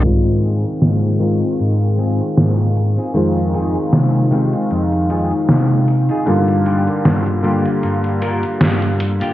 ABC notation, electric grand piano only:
X:1
M:4/4
L:1/8
Q:"Swing 16ths" 1/4=77
K:Ablyd
V:1 name="Electric grand piano"
[E,A,CF]3 [E,A,CF]4- [E,A,CF] | [E,A,CF]3 [E,A,CF]4- [E,A,CF] | [D,G,B,F]3 [D,G,B,F]4- [D,G,B,F] |]